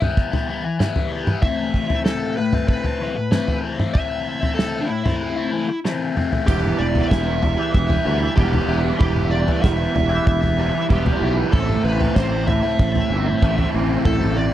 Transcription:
0.00 G3 B3 E4, floor tom, mid tom
0.17 kick
0.32 G3 B3 E4, floor tom
0.48 E3 G3 B3 E4
0.64 muted overdriven electric guitar stroke
0.79 E3 G3 B3 E4, snare, mid tom
0.96 floor tom
1.11 E3 G3 B3 E4
1.26 G3 B3 E4, mid tom
1.42 A2 E3 A3 C4 E4 E5, kick, floor tom
1.74 kick
1.89 A3 C4 E4, floor tom
2.05 A2 E3 A3 C4 E4 A4, snare
2.37 B4, muted overdriven electric guitar stroke
2.53 A3 C4 E4, floor tom, mid tom
2.68 B4, kick
2.84 A3 C4 E4, floor tom
3.01 E3 A3 C4 E4
3.16 muted overdriven electric guitar stroke
3.31 A2 E3 A3 C4 E4, snare, mid tom
3.48 floor tom
3.62 E3 A3 C4 E4
3.79 A3 C4 E4, mid tom
3.94 A2 E3 A3 C4 E4 E5, kick, floor tom
4.41 A3 C4 E4, floor tom
4.54 A2 E3 A3 C4 E4 A4
4.59 snare
4.81 D4
4.86 E4, muted overdriven electric guitar stroke
5.04 A3 C4 E4, floor tom, mid tom
5.36 A3 C4 E4
5.51 E3 A3 C4 E4
5.68 muted overdriven electric guitar stroke
5.85 A2 E3 A3 C4 E4, snare
6.16 E3 A3 C4 E4, mid tom
6.31 A3 C4 E4, floor tom
6.47 E1 E3 G3 B3 E4 G4, kick, floor tom, crash
6.63 G3 B3 E4, mid tom
6.78 E1 E3 G3 B3 E4 D5
6.95 G3 B3 E4, floor tom
7.02 D5
7.09 E1 E3 G3 B3 E4 E5, kick, snare
7.27 G3 B3 E4
7.42 E3 G3 B3 E4, muted overdriven electric guitar stroke, floor tom
7.57 G3 B3 E4, muted overdriven electric guitar stroke
7.73 E1 E5, kick
7.88 G3 B3 E4, floor tom
8.04 D2 E3 G3 B3 E4
8.20 G3 B3 E4, muted overdriven electric guitar stroke
8.36 E1 E3 G3 B3 E4 G4, kick
8.52 G3 B3 E4, floor tom
8.67 E1 E3 G3 B3 E4
8.84 G3 B3 E4
8.99 E1 E3 G3 B3 E4 G4, kick, floor tom
9.15 G3 B3 E4, mid tom
9.31 E3 G3 B3 E4 D5
9.46 G3 B3 E4, floor tom
9.62 E1 E3 G3 B3 E4 E5, kick, snare
9.78 G3 B3 E4
9.94 E1 E3 G3 B3 E4, muted overdriven electric guitar stroke, floor tom
10.09 G3 B3 E4, muted overdriven electric guitar stroke
10.26 E1 E5, kick
10.42 G3 B3 E4, floor tom
10.57 E3 G3 B3 E4
10.73 G3 B3 E4, muted overdriven electric guitar stroke
10.89 E1 E3 G3 B3 E4 G4, kick
11.05 G3 B3 E4, floor tom
11.22 B1 E3 G3 B3 E4
11.36 G3 B3 E4
11.52 A1 A2 E3 A3 C4 E4 A4, kick, floor tom
11.68 A3 C4 E4, mid tom
11.84 A1 E3 A3 C4 E4 B4
11.99 A3 C4 E4, floor tom
12.16 A1 A2 E3 A3 C4 E4 C5, kick, snare
12.32 A3 C4 E4
12.47 E3 A3 C4 E4 E5, muted overdriven electric guitar stroke, floor tom
12.63 A3 C4 E4, muted overdriven electric guitar stroke
12.79 A1, kick
12.95 A3 C4 E4, floor tom
13.10 G1 E3 A3 C4 E4
13.26 A3 C4 E4, muted overdriven electric guitar stroke
13.42 A1 A2 E3 A3 C4 E4, kick
13.56 A3 C4 E4, floor tom
13.72 A1 E3 A3 C4 E4
13.88 A3 C4 E4
14.04 A1 A2 E3 A3 C4 E4 A4, kick, floor tom
14.20 A3 C4 E4, mid tom
14.36 E3 A3 C4 E4 D5

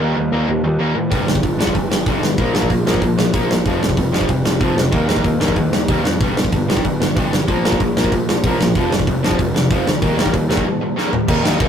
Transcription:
0.01 D#2 D#3 G3 A#3
0.17 D#2 D#3 G3
0.32 D#2 D#3 G3 A#3
0.48 D#2 D#3 G3
0.64 D#2 D#3 G3
0.79 D#2 D#3 G3 A#3
0.95 A2 D#3 G3
1.11 G1 G2 D3 G3, kick, open hi-hat
1.27 G1 G2 D3, snare
1.35 kick
1.43 G1 G2 D3, kick, open hi-hat
1.59 G2 D3 G3, snare
1.67 kick
1.75 G1 G2 D3, kick, open hi-hat
1.90 G1 G2 D3, snare
2.06 G1 G2 D3 G3, kick, open hi-hat
2.22 G1 G2 D3, snare
2.38 A#1 A#2 F3 A#3, kick, open hi-hat
2.54 A#1 A#2 F3 A#3, snare
2.62 kick
2.70 A#1 A#2 F3, kick, open hi-hat
2.86 A#1 A#2 F3 A#3, snare
2.94 kick
3.01 A#1 A#2 F3, kick, open hi-hat
3.17 A#1 A#2 F3, snare
3.33 A#1 A#2 F3 A#3, kick, open hi-hat
3.49 A#1 A#2 F3, snare
3.65 F1 F2 C3 F3, kick, open hi-hat
3.81 F1 F2 C3, snare
3.89 kick
3.97 F1 F2 C3, kick, open hi-hat
4.12 F2 C3 F3, snare
4.21 kick
4.29 F1 F2 C3, kick, open hi-hat
4.44 F1 F2 C3, snare
4.60 F1 F2 C3 F3, kick, open hi-hat
4.75 F1 F2 C3, snare
4.91 D#2 D#3 G3 A#3, kick, open hi-hat
5.08 D#2 D#3 G3 A#3, snare
5.16 kick
5.24 D#2 D#3 G3, kick, open hi-hat
5.40 D#2 D#3 G3 A#3, snare
5.48 kick
5.56 D#2 D#3 G3, kick, open hi-hat
5.71 D#2 D#3 G3, snare
5.88 D#2 D#3 G3 A#3, kick, open hi-hat
6.04 F2 D#3 G3, snare
6.21 G1 G2 D3 G3, kick, open hi-hat
6.36 G1 G2 D3, snare
6.44 kick
6.52 G1 G2 D3, kick, open hi-hat
6.68 G2 D3 G3, snare
6.77 kick
6.84 G1 G2 D3, kick, open hi-hat
7.00 G1 G2 D3, snare
7.16 G1 G2 D3 G3, kick, open hi-hat
7.32 G1 G2 D3, snare
7.48 A#1 A#2 F3 A#3, kick, open hi-hat
7.64 A#1 A#2 F3 A#3, snare
7.72 kick
7.80 A#1 A#2 F3, kick, open hi-hat
7.96 A#1 A#2 F3 A#3, snare
8.04 kick
8.12 A#1 A#2 F3, kick, open hi-hat
8.27 A#1 A#2 F3, snare
8.44 A#1 A#2 F3 A#3, kick, open hi-hat
8.59 A#1 A#2 F3, snare
8.75 F1 F2 C3 F3, kick, open hi-hat
8.91 F1 F2 C3, snare
8.99 kick
9.07 F1 F2 C3, kick, open hi-hat
9.23 F2 C3 F3, snare
9.31 kick
9.39 F1 F2 C3, kick, open hi-hat
9.54 F1 F2 C3, snare
9.70 F1 F2 C3 F3, kick, open hi-hat
9.86 D2 F2 C3, snare
10.02 D#2 D#3 G3 A#3, kick, open hi-hat
10.17 D#2 D#3 G3 A#3, snare
10.26 kick
10.33 D#2 D#3 G3, kick, open hi-hat
10.48 D#2 D#3 G3 A#3, snare
10.57 kick
10.66 D#3 G3
10.81 D#3 G3
10.96 D#3 G3 A#3, snare
11.12 D#3 G3, floor tom
11.28 D#2 D#3 G3 A#3 D#4, kick, crash
11.43 D#2 D#3 G3 A#3 D#4, snare
11.59 D#2 D#3 G3 A#3 D#4, kick, crash

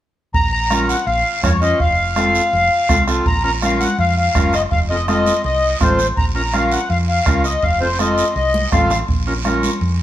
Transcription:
0.34 A#1 A#5, bombo low, long guiro
0.52 A#5
0.70 C#4 F4 A#4, bombo rim, high conga, short guiro
0.89 F#5, short guiro
1.07 A#1 F5, long guiro
1.43 F2 C#4 F4 A#4 C#5, bombo low, bombo rim, high conga, short guiro
1.61 C#4 F4 C5 D#5, short guiro
1.80 F1 F5, bombo low, long guiro
2.16 C4 F4 A4, bombo rim, high conga, short guiro
2.35 short guiro
2.53 F1, long guiro
2.89 C2 C4 F4 A4, bombo low, bombo rim, high conga, short guiro
3.07 C4 F4 A4, bombo rim, short guiro
3.26 A#1 A#5, bombo low, long guiro
3.43 C#4 F4 A#4 A#5
3.62 C#4 F4 A#4 F5, bombo rim, high conga, short guiro
3.80 F#5, high conga, short guiro
3.98 F2 F5, long guiro
4.17 F5
4.35 F#1 C#4 F4 A#4, bombo low, bombo rim, high conga, short guiro
4.53 D#5, bombo rim, short guiro
4.71 F1 F5, bombo low, long guiro
4.89 C4 F4 A4 D#5
5.08 C4 F4 A4 D#5, bombo rim, high conga, short guiro
5.26 high conga, short guiro
5.44 C2 D#5, long guiro
5.80 A1 C4 F4 A4 C5, bombo low, bombo rim, high conga, short guiro
5.99 short guiro
6.17 A#1 A#5, bombo low, long guiro
6.35 C#4 F4 A#4 A#5
6.53 C#4 F4 A#4 F5, bombo rim, high conga, short guiro
6.72 F#5, short guiro
6.90 F2 F5, long guiro
7.08 F5
7.26 C#2 C#4 F4 A#4, bombo low, bombo rim, high conga, short guiro
7.44 D#5, short guiro
7.63 F1 F5, bombo low, long guiro
7.81 C4 F4 A4 C5
7.99 C4 F4 A4 D#5, bombo rim, high conga, short guiro
8.18 short guiro
8.36 C2 D#5, long guiro
8.54 high conga
8.72 A1 C4 F4 A4 F5, bombo low, bombo rim, high conga, short guiro
8.90 bombo rim, low conga, short guiro
9.08 A#1, bombo low, long guiro
9.27 C#4 F4 A#4
9.45 C#4 F4 A#4, bombo rim, high conga, short guiro
9.63 high conga, short guiro
9.81 F2, long guiro

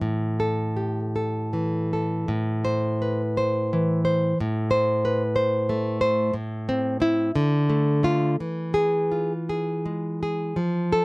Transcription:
0.01 A2
0.40 A4
0.77 G4
1.16 A4
1.53 E3
1.93 A4
2.28 A2
2.65 C5
3.02 B4
3.37 C5
3.73 E3
4.05 C5
4.40 A2
4.71 C5
5.05 B4
5.36 C5
5.69 A3
6.01 C5
6.34 A2
6.69 C4
7.00 C4 E4
7.35 D3
7.69 A3
8.03 A3 F4
8.40 E3
8.74 G#4
9.12 F4
9.49 G#4
9.86 G#3
10.23 G#4
10.56 F3
10.93 A4

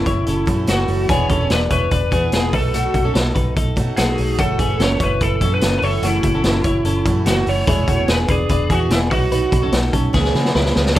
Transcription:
Already playing: E3 A3 C#4 E4 F#4
0.06 F#1 E4 C#5, kick, closed hi-hat
0.26 F#1 C#4 A4, closed hi-hat
0.46 F#2 E3 A3 C#4 F#4, kick, closed hi-hat
0.66 F#1 E3 A3 C#4 F#4, snare, closed hi-hat
0.87 F#1 E3 A3 C#4 F#4, open hi-hat
1.09 E1 E3 B3 D4 G#4 C#5, kick, closed hi-hat
1.29 E1 C#4 A4, kick, closed hi-hat
1.41 B3 D4 G#4
1.50 E1 D4 B4, snare, closed hi-hat
1.70 E1 E4 B4 C#5, kick, closed hi-hat
1.91 E1 D4 B4, kick, closed hi-hat
2.11 E2 E3 B3 D4 G#4, kick, closed hi-hat
2.32 E1 E3 B3 D4 G#4, snare, closed hi-hat
2.53 B1 F#3 A3 D#4 F#4 A4 B4, kick, open hi-hat
2.73 B2 F#3 A3 D#4 F#4, closed hi-hat
2.94 B1, kick, closed hi-hat
3.04 A3 C#4 D#4 F#4 A4
3.14 B1 D#4 A4, snare, closed hi-hat
3.35 B1 D#4 B4, kick, closed hi-hat
3.56 B1 D#4 A4, kick, closed hi-hat
3.76 B2 F#3 A3 D#4 F#4, kick, closed hi-hat
3.97 B1 F#3 A3 D#4 F#4 G#4, snare, closed hi-hat
4.18 B1 F#3 A3 D#4 F#4, open hi-hat
4.38 F#1 F#2 C#3 E3 A3 C#4 F#4 A4, kick, closed hi-hat
4.59 F#1 B3 G#4, kick, closed hi-hat
4.70 E3 A3 C#4 F#4
4.79 F#1 C#4 A4 C#5, snare, closed hi-hat
5.00 F#1 E4 B4 C#5, kick, closed hi-hat
5.20 F#1 E4 A4 B4, kick, closed hi-hat
5.41 F#2 E3 A3 C#4 F#4 A4, kick, closed hi-hat
5.54 B4
5.61 F#1 E3 A3 C#4 F#4, snare, closed hi-hat
5.79 F#1 E3 A3 B4, open hi-hat
5.83 C#4 E4 F#4 A4 C#5
6.02 F#1 F#2 C#3 E3 A3 C#4 E4 F#4, closed hi-hat
6.23 F#1, kick, closed hi-hat
6.34 E3 A3 C#4 F#4 A4
6.44 F#1 C#4 A4, snare, closed hi-hat
6.64 F#1 E4 C#5, kick, closed hi-hat
6.84 F#1 C#4 A4, closed hi-hat
7.05 F#2 E3 A3 C#4 F#4, kick, closed hi-hat
7.26 F#1 E3 A3 C#4 F#4, snare, closed hi-hat
7.46 F#1 E3 A3 C#4 F#4 C#5, open hi-hat
7.67 E1 E3 G#3 B3 D4 E4 G#4, kick, closed hi-hat
7.88 E1 A3 F#4, kick, closed hi-hat
7.97 B3 D4 G#4
8.08 E1 B3 G#4 B4, snare, closed hi-hat
8.28 E1 D4 G#4 B4, kick, closed hi-hat
8.49 E1 D4 B4, kick, closed hi-hat
8.70 E2 E3 B3 D4 F#4 G#4, kick, closed hi-hat
8.90 E1 E3 B3 D4 E4 G#4, snare, closed hi-hat
9.11 B1 F#3 A3 D#4 F#4 B4, kick, open hi-hat
9.31 B2 F#3 A3 D#4 F#4 B4, closed hi-hat
9.52 B1, kick, closed hi-hat
9.62 A3 C#4 D#4 F#4 A4
9.72 B1 A3 F#4, snare, closed hi-hat
9.93 B1 C#4 A4, kick, closed hi-hat
10.13 C#2 C#3 E3 B3 C#4 G#4, kick, snare
10.24 snare
10.34 C#3 E3 B3 C#4 G#4, snare
10.45 snare
10.55 C#2 E3 B3 C#4 E4 G#4 B4, snare
10.66 snare
10.75 C#2 E3 B3 C#4 G#4, snare
10.86 snare

